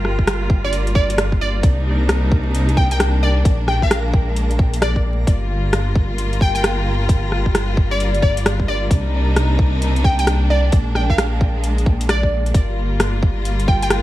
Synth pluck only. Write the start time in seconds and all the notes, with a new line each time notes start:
0.64 D5
0.95 D5
1.41 D5
2.77 G5
2.92 G5
3.23 D5
3.68 G5
3.83 F5
4.82 D5
6.42 G5
6.55 G5
7.91 D5
8.22 D5
8.68 D5
10.05 G5
10.19 G5
10.50 D5
10.96 G5
11.10 F5
12.09 D5
13.68 G5
13.83 G5